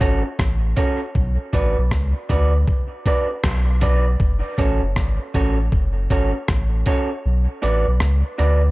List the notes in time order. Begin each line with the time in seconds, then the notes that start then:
0.01 G#1 C#4 F#4 A4 C#5, kick, closed hi-hat
0.25 muted clean electric guitar stroke
0.39 A1, kick, cross-stick
0.77 C#4 F#4 A4 C#5, kick, closed hi-hat
1.15 B1, kick
1.53 A1 D4 F#4 B4 D5, kick, closed hi-hat
1.78 B1
1.91 C#2, kick, cross-stick
2.29 D2 D4 F#4 B4 D5, kick, closed hi-hat
2.68 kick
3.06 D4 F#4 B4 D5, kick, closed hi-hat
3.30 muted clean electric guitar stroke
3.44 B1, kick, cross-stick
3.81 D4 F#4 B4 D5, kick, closed hi-hat
4.20 F#1, kick
4.58 A1 C#4 F#4 A4 C#5, kick, closed hi-hat
4.83 F#1
4.96 G#1, kick, cross-stick
5.34 A1 C#4 F#4 A4 C#5, kick, closed hi-hat
5.72 F#1, kick
6.10 G#1 C#4 F#4 A4 C#5, kick, closed hi-hat
6.34 muted clean electric guitar stroke
6.48 A1, kick, cross-stick
6.86 C#4 F#4 A4 C#5, kick, closed hi-hat
7.26 B1
7.62 A1 D4 F#4 B4 D5, closed hi-hat
7.88 B1
8.00 C#2, cross-stick
8.38 D2 D4 F#4 B4 D5, closed hi-hat